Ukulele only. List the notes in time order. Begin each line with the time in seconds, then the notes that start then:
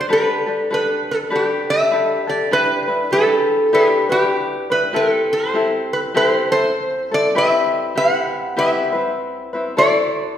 0.09 D4 G4 A4 B4
0.46 D4 G4 A4
0.70 D4 G4 A4 B4
1.30 D4 G4 A4 B4
1.91 D4 G4 A4 B4
2.27 D4 G4 A4
2.51 D4 E4 G4 B4
2.88 D4 E4 B4
3.12 D4 E4 G4 B4
3.73 D4 E4 G4 B4
4.09 D4 E4 B4
4.70 D4 E4 B4
4.93 C4 E4 G4 A4
5.54 C4 E4 G4 A4
6.14 C4 E4 G4 A4
6.51 C4 E4 A4
7.11 C4 E4 A4
7.35 C4 E4 G4 B4
7.95 C4 E4 G4 B4
8.57 C4 E4 G4 B4
8.93 C4 E4 B4
9.53 C4 E4 B4
9.77 E4 F#4 A4 D5